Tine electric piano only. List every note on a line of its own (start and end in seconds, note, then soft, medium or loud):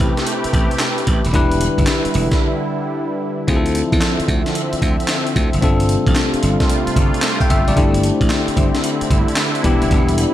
0.00 1.29 C4 medium
0.00 1.30 E4 medium
0.00 1.30 G4 medium
0.00 1.31 B4 medium
1.33 3.44 D4 medium
1.33 3.44 E4 medium
1.33 3.44 G4 medium
1.33 3.45 B4 medium
3.47 5.58 C4 medium
3.47 5.58 E4 medium
3.47 5.59 F4 medium
3.47 3.57 G#4 medium
3.56 5.63 A4 medium
5.62 7.72 C4 medium
5.62 7.73 D4 medium
5.62 7.73 F4 medium
5.62 7.73 A4 medium
7.41 7.50 G5 medium
7.50 7.67 E5 medium
7.68 7.93 D5 medium
7.76 9.60 A3 medium
7.76 9.60 D4 medium
7.76 9.61 E4 medium
7.76 9.61 G4 medium
9.63 10.34 B3 medium
9.63 10.34 D4 medium
9.63 10.34 E4 medium
9.63 10.34 G4 medium